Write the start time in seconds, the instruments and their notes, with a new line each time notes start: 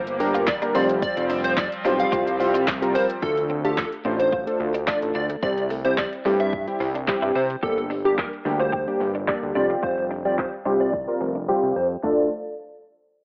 Already playing: analog synth bass G1, analog synth pad D3 G3 A#3, digital synth lead C5
0.07 closed hi-hat, shaker
0.20 synth keys G3 A#3 D4 G4 A#4, muted clean electric guitar stroke, open hi-hat, shaker
0.34 clean electric guitar F4, closed hi-hat, shaker
0.47 digital synth lead D5, muted clean electric guitar stroke, kick, snare, clap, closed hi-hat, shaker
0.62 synth keys G3 A#3 D4 G4 A#4, clean electric guitar D4, closed hi-hat, shaker
0.75 analog synth bass F1, analog synth pad F3 C4, synth keys G3 C4 F4 G4 C5, clean electric guitar C4, digital synth lead D5, open hi-hat, shaker
0.89 closed hi-hat, shaker
1.02 digital synth lead D5, kick, closed hi-hat, shaker
1.17 analog synth bass F1, muted clean electric guitar stroke, closed hi-hat, shaker
1.30 clean electric guitar D4, open hi-hat, shaker
1.44 clean electric guitar C4, digital synth lead C5, closed hi-hat, shaker
1.57 digital synth lead D5, kick, snare, clap, closed hi-hat, shaker
1.72 closed hi-hat, shaker
1.85 analog synth bass B1, synth keys G3 C4 F4 G4 C5, clean electric guitar D4, open hi-hat, shaker
2.00 digital synth lead F5, closed hi-hat, shaker
2.12 analog synth bass C2, synth keys G3 C4 F4 G4 C5, analog synth pad G3, clean electric guitar F4, kick, closed hi-hat, shaker
2.27 closed hi-hat, shaker
2.40 synth keys G3 C4 F4 G4 C5, muted clean electric guitar stroke, open hi-hat, shaker
2.54 clean electric guitar F4, closed hi-hat, shaker
2.67 kick, snare, clap, closed hi-hat, shaker
2.82 synth keys G3 C4 F4 G4 A#4, closed hi-hat, shaker
2.95 clean electric guitar C4, digital synth lead C5, open hi-hat, shaker
3.09 closed hi-hat, shaker
3.22 analog synth bass D2, synth keys A3 D4 F4 A4, clean electric guitar D4, digital synth lead A4, kick
3.37 muted clean electric guitar stroke, closed hi-hat
3.50 clean electric guitar C4
3.64 synth keys A3 D4 F4 A4, digital synth lead G4, closed hi-hat
3.77 digital synth lead A4, muted clean electric guitar stroke, kick, snare, clap
3.92 closed hi-hat
4.05 analog synth bass A1, synth keys A3 D4 F4 C5, clean electric guitar C4
4.19 clean electric guitar D4, digital synth lead C5, closed hi-hat
4.32 clean electric guitar F4, kick
4.47 synth keys A3 D4 F4 A4, closed hi-hat
4.60 analog synth bass D2, muted clean electric guitar stroke
4.75 clean electric guitar D4, closed hi-hat
4.87 synth keys A3 D4 F4 A4, digital synth lead D5, muted clean electric guitar stroke, kick, snare, clap
5.02 analog synth bass A1, closed hi-hat
5.15 analog synth bass D2, clean electric guitar D4, digital synth lead D5
5.30 clean electric guitar A3, closed hi-hat
5.42 analog synth bass C2, synth keys G3 C4 E4 G4, clean electric guitar C4, digital synth lead D5, kick
5.57 muted clean electric guitar stroke, closed hi-hat
5.70 clean electric guitar A3, open hi-hat
5.85 synth keys G3 C4 E4 G4, digital synth lead C5, closed hi-hat
5.98 digital synth lead D5, muted clean electric guitar stroke, kick, snare, clap
6.13 closed hi-hat
6.25 analog synth bass G2, synth keys G3 C4 E4 G4, clean electric guitar A3, open hi-hat
6.40 clean electric guitar C4, digital synth lead E5, closed hi-hat
6.53 muted clean electric guitar stroke, kick
6.67 synth keys G3 C4 E4 G4, closed hi-hat
6.80 analog synth bass C2, clean electric guitar C4, open hi-hat
6.95 clean electric guitar D4, closed hi-hat
7.08 synth keys G3 C4 E4 G4, muted clean electric guitar stroke, kick, snare, clap
7.22 analog synth bass G2, clean electric guitar E4, closed hi-hat
7.35 analog synth bass C3, clean electric guitar C4, digital synth lead C5, open hi-hat
7.50 closed hi-hat
7.63 analog synth bass G1, synth keys G3 A#3 D4 G4, clean electric guitar G4, digital synth lead A4, kick
7.77 muted clean electric guitar stroke, closed hi-hat
7.90 clean electric guitar D4, open hi-hat
8.05 synth keys G3 A#3 D4 G4, digital synth lead G4, closed hi-hat
8.18 digital synth lead A#4, kick, snare, clap
8.33 closed hi-hat
8.45 analog synth bass D2, synth keys G3 A#3 D4 G4, clean electric guitar D4, open hi-hat
8.60 clean electric guitar F4, digital synth lead C5, closed hi-hat
8.73 clean electric guitar G4, kick
8.87 synth keys G3 A#3 D4 G4, closed hi-hat
9.00 analog synth bass G1, muted clean electric guitar stroke, open hi-hat
9.15 clean electric guitar D4, closed hi-hat
9.28 synth keys G3 A#3 D4 G4, digital synth lead D5, muted clean electric guitar stroke, kick, snare, clap
9.43 analog synth bass D2, closed hi-hat
9.55 analog synth bass F1, synth keys G3 C4 F4 G4, clean electric guitar D4, digital synth lead D5, open hi-hat
9.70 clean electric guitar C4, closed hi-hat
9.83 analog synth bass F1, clean electric guitar F4, digital synth lead C5, kick
9.98 muted clean electric guitar stroke, closed hi-hat
10.11 clean electric guitar D4, open hi-hat
10.25 synth keys G3 C4 F4 G4, digital synth lead D5, closed hi-hat
10.38 digital synth lead C5, muted clean electric guitar stroke, kick, snare, clap
10.53 closed hi-hat
10.65 analog synth bass C2, synth keys G3 C4 F4 G4, clean electric guitar D4, open hi-hat
10.80 clean electric guitar C4, digital synth lead D5, closed hi-hat
10.93 muted clean electric guitar stroke, kick
11.08 synth keys G3 C4 F4 A#4, closed hi-hat
11.21 analog synth bass F1, clean electric guitar C4, open hi-hat
11.35 clean electric guitar D4, closed hi-hat
11.48 synth keys G3 C4 F4 G4
11.63 analog synth bass C2
11.76 analog synth bass F2, digital synth lead C5
12.03 analog synth bass D2, synth keys A3 D4 F4 A4, clean electric guitar D4, digital synth lead D5, snare, floor tom